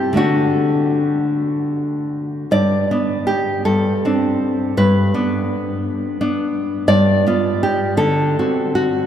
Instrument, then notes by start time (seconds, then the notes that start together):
nylon-string guitar
Already playing: C4 E4 G4
0.13 D3 A3 D4
0.17 F#4
2.51 G2 D5
2.91 B3 D4
3.27 G4
3.65 G2 A4
4.05 C4 D4
4.77 G2 B4
5.14 B3 D4
6.21 B3 D4
6.88 G2 D5
7.27 B3 F4
7.63 G4
7.97 D3 A4
8.39 C4 F#4
8.75 F#4